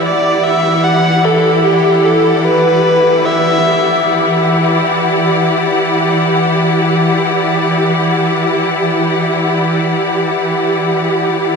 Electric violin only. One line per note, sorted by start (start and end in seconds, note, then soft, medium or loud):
0.05 0.45 D5 medium
0.43 0.86 E5 medium
0.84 1.26 F#5 medium
1.25 1.63 A4 medium
1.64 2.06 G4 medium
2.04 2.46 A4 medium
2.45 3.26 B4 medium
3.25 4.44 E5 medium